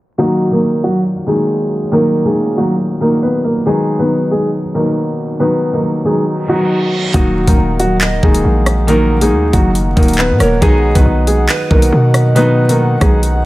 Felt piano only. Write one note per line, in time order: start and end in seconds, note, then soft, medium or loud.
0.18 0.44 D#3 medium
0.18 0.44 F#3 medium
0.18 0.45 A#3 medium
0.18 0.45 D#4 loud
0.51 1.11 D#3 medium
0.51 1.11 F#3 medium
0.51 1.12 A#3 medium
0.51 1.12 D#4 medium
1.27 1.79 D#3 medium
1.27 1.79 F#3 medium
1.27 1.79 A#3 medium
1.27 1.79 D#4 medium
1.92 2.18 D#3 loud
1.92 2.18 F#3 medium
1.92 2.18 A#3 medium
1.92 2.19 D#4 medium
2.25 2.51 D#3 medium
2.25 2.51 F#3 medium
2.25 2.51 A#3 medium
2.25 2.51 D#4 medium
2.57 2.92 D#3 medium
2.57 2.92 F#3 medium
2.57 2.93 A#3 medium
2.57 2.93 D#4 medium
3.00 3.53 D#3 medium
3.00 3.53 F#3 medium
3.00 3.53 A#3 medium
3.00 3.53 D#4 medium
3.66 3.92 D#3 medium
3.66 3.92 F#3 medium
3.66 3.92 B3 medium
3.66 3.93 D#4 loud
3.99 4.59 D#3 medium
3.99 4.59 F#3 medium
3.99 4.59 B3 medium
3.99 4.60 D#4 medium
4.74 5.27 B2 medium
4.74 5.27 D#3 medium
4.74 5.27 F#3 medium
4.74 5.27 D#4 medium
5.40 5.66 D#3 medium
5.40 5.66 F#3 medium
5.40 5.66 B3 medium
5.40 5.67 D#4 loud
5.73 5.99 D#3 medium
5.73 5.99 F#3 medium
5.73 5.99 B3 medium
5.73 5.99 D#4 medium
6.05 6.40 D#3 medium
6.05 6.40 F#3 medium
6.05 6.40 B3 medium
6.05 6.41 D#4 medium
6.48 7.00 D#3 medium
6.48 7.01 F#3 medium
6.48 7.01 B3 medium
6.48 7.01 D#4 medium
7.14 7.40 D#3 medium
7.14 7.40 F#3 medium
7.14 7.40 A#3 loud
7.14 7.41 D#4 loud
7.47 8.07 D#3 medium
7.47 8.07 F#3 medium
7.47 8.07 A#3 medium
7.47 8.07 D#4 medium
8.22 8.74 D#3 medium
8.22 8.75 F#3 medium
8.22 8.75 A#3 medium
8.22 8.75 D#4 medium
8.87 9.14 D#3 loud
8.87 9.14 F#3 medium
8.87 9.14 A#3 medium
8.87 9.14 D#4 loud
9.21 9.46 D#3 medium
9.21 9.47 F#3 medium
9.21 9.47 A#3 medium
9.21 9.47 D#4 medium
9.53 9.88 D#3 medium
9.53 9.88 F#3 medium
9.53 9.88 A#3 medium
9.53 9.89 D#4 medium
9.96 10.48 D#3 medium
9.96 10.48 F#3 medium
9.96 10.49 A#3 medium
9.96 10.49 D#4 medium
10.61 10.88 D#3 loud
10.61 10.88 F#3 loud
10.61 10.88 B3 medium
10.61 10.88 D#4 loud
10.95 11.55 D#3 medium
10.95 11.55 F#3 medium
10.95 11.55 B3 medium
10.95 11.55 D#4 medium
11.70 12.23 B2 medium
11.70 12.22 D#3 medium
11.70 12.22 F#3 medium
11.70 12.23 D#4 medium
12.35 12.62 D#3 loud
12.35 12.62 F#3 medium
12.35 12.62 B3 medium
12.35 12.62 D#4 loud
12.69 12.94 D#3 medium
12.69 12.95 F#3 medium
12.69 12.95 B3 medium
12.69 12.95 D#4 medium
13.00 13.36 D#3 medium
13.00 13.36 F#3 medium
13.00 13.36 B3 medium
13.00 13.36 D#4 medium